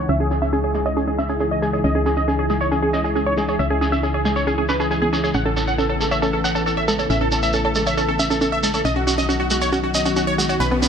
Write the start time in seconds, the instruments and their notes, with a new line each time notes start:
Already playing: analog synth pad C#3 E3 G#3 D#4 E4
0.08 fm bass C#2, synth arpeggio sound C#4, supersaw synth E5, shekere
0.20 synth arpeggio sound C#4, supersaw synth G#4
0.31 synth arpeggio sound C#4, supersaw synth G#4, shekere
0.42 synth arpeggio sound C#4, supersaw synth E5, shekere
0.53 synth arpeggio sound C#4, supersaw synth G#4, shekere
0.64 supersaw synth G#4, synth arpeggio sound C#5
0.74 synth arpeggio sound G#3, supersaw synth G#4, shekere
0.85 synth arpeggio sound C#5, supersaw synth D#5, shekere
0.97 synth arpeggio sound C#4, supersaw synth G#4, shekere
1.08 synth arpeggio sound C#4, supersaw synth G#4
1.18 synth arpeggio sound C#4, supersaw synth E5, shekere
1.28 synth arpeggio sound C#4, supersaw synth G#4, shekere
1.40 synth arpeggio sound C#4, supersaw synth G#4, shekere
1.51 synth arpeggio sound C#5, supersaw synth D#5
1.62 synth arpeggio sound G#3, supersaw synth G#4, shekere
1.73 supersaw synth G#4, synth arpeggio sound C#5, shekere
1.84 fm bass C#2, synth arpeggio sound C#4, supersaw synth D#5, shekere
1.95 synth arpeggio sound C#4, supersaw synth G#4
2.06 synth arpeggio sound C#4, supersaw synth G#4, shekere
2.16 synth arpeggio sound C#4, supersaw synth D#5, shekere
2.28 synth arpeggio sound C#4, supersaw synth G#4, shekere
2.39 supersaw synth G#4, synth arpeggio sound C#5
2.50 synth arpeggio sound G#3, supersaw synth G#4, shekere
2.61 supersaw synth C#5, synth arpeggio sound C#5, shekere
2.72 synth arpeggio sound C#4, supersaw synth G#4, shekere
2.82 synth arpeggio sound C#4, supersaw synth G#4
2.93 synth arpeggio sound C#4, supersaw synth D#5, shekere
3.04 synth arpeggio sound C#4, supersaw synth G#4, shekere
3.15 synth arpeggio sound C#4, supersaw synth G#4, shekere
3.26 supersaw synth C#5, synth arpeggio sound C#5
3.37 synth arpeggio sound G#3, supersaw synth G#4, shekere
3.48 supersaw synth G#4, synth arpeggio sound C#5, shekere
3.59 fm bass C#2, synth arpeggio sound C#4, supersaw synth E5, shekere
3.70 synth arpeggio sound C#4, supersaw synth G#4
3.81 synth arpeggio sound C#4, supersaw synth G#4, shekere
3.92 synth arpeggio sound C#4, supersaw synth E5, shekere
4.03 synth arpeggio sound C#4, supersaw synth G#4, shekere
4.14 supersaw synth G#4, synth arpeggio sound C#5
4.25 synth arpeggio sound G#3, supersaw synth G#4, shekere
4.36 supersaw synth C#5, synth arpeggio sound C#5, shekere
4.47 synth arpeggio sound C#4, supersaw synth G#4, shekere
4.58 synth arpeggio sound C#4, supersaw synth G#4
4.69 synth arpeggio sound C#4, supersaw synth B4, shekere
4.80 synth arpeggio sound C#4, supersaw synth G#4, shekere
4.91 synth arpeggio sound C#4, supersaw synth G#4, shekere
5.02 synth arpeggio sound B3, supersaw synth G#4
5.13 synth arpeggio sound C#4, supersaw synth G#4, shekere
5.24 supersaw synth G#4, synth arpeggio sound C#5, shekere
5.34 fm bass A1, analog synth pad A3 B3, synth arpeggio sound C#4, supersaw synth F#5, shekere
5.46 synth arpeggio sound C#4, supersaw synth A4
5.56 synth arpeggio sound C#4, supersaw synth A4, shekere
5.67 synth arpeggio sound C#4, supersaw synth F#5, shekere
5.78 synth arpeggio sound C#4, supersaw synth A4, shekere
5.89 supersaw synth A4, synth arpeggio sound C#5
6.00 synth arpeggio sound G#3, supersaw synth A4, shekere
6.11 synth arpeggio sound C#5, supersaw synth E5, shekere
6.22 synth arpeggio sound C#4, supersaw synth A4, shekere
6.33 synth arpeggio sound C#4, supersaw synth A4
6.44 synth arpeggio sound C#4, supersaw synth F#5, shekere
6.55 synth arpeggio sound C#4, supersaw synth A4, shekere
6.66 synth arpeggio sound C#4, supersaw synth A4, shekere
6.77 synth arpeggio sound C#5, supersaw synth E5
6.88 synth arpeggio sound G#3, supersaw synth A4, shekere
6.99 supersaw synth A4, synth arpeggio sound C#5, shekere
7.10 fm bass A1, synth arpeggio sound C#4, supersaw synth E5, shekere
7.21 synth arpeggio sound C#4, supersaw synth A4
7.32 synth arpeggio sound C#4, supersaw synth A4, shekere
7.43 synth arpeggio sound C#4, supersaw synth E5, shekere
7.53 synth arpeggio sound C#4, supersaw synth A4, shekere
7.65 supersaw synth A4, synth arpeggio sound C#5
7.75 synth arpeggio sound G#3, supersaw synth A4, shekere
7.87 synth arpeggio sound C#5, supersaw synth E5, shekere
7.97 synth arpeggio sound C#4, supersaw synth A4, shekere
8.08 synth arpeggio sound C#4, supersaw synth A4
8.19 synth arpeggio sound C#4, supersaw synth E5, shekere
8.30 synth arpeggio sound C#4, supersaw synth A4, shekere
8.41 synth arpeggio sound C#4, supersaw synth A4, shekere
8.52 synth arpeggio sound C#5, supersaw synth E5
8.63 synth arpeggio sound G#3, supersaw synth A4, shekere
8.74 supersaw synth A4, synth arpeggio sound C#5, shekere
8.85 fm bass B1, analog synth pad B2 D#3 F#3 D#4 F#4, synth arpeggio sound C#4, supersaw synth D#5, shekere
8.96 synth arpeggio sound C#4, supersaw synth F#4
9.07 synth arpeggio sound C#4, supersaw synth F#4, shekere
9.18 synth arpeggio sound C#4, supersaw synth D#5, shekere
9.29 synth arpeggio sound C#4, supersaw synth F#4, shekere
9.40 supersaw synth F#4, synth arpeggio sound C#5
9.50 synth arpeggio sound G#3, supersaw synth F#4, shekere
9.62 supersaw synth C#5, synth arpeggio sound C#5, shekere
9.72 synth arpeggio sound C#4, supersaw synth F#4, shekere
9.84 synth arpeggio sound C#4, supersaw synth F#4
9.94 synth arpeggio sound C#4, supersaw synth D#5, shekere
10.05 synth arpeggio sound C#4, supersaw synth F#4, shekere
10.16 synth arpeggio sound C#4, supersaw synth F#4, shekere
10.27 supersaw synth C#5, synth arpeggio sound C#5
10.38 synth arpeggio sound G#3, supersaw synth F#4, shekere
10.49 supersaw synth F#4, synth arpeggio sound C#5, shekere
10.60 fm bass B1, synth arpeggio sound C#4, supersaw synth B4, noise sweep, shekere
10.71 supersaw synth B3, synth arpeggio sound C#4
10.82 supersaw synth B3, synth arpeggio sound C#4, shekere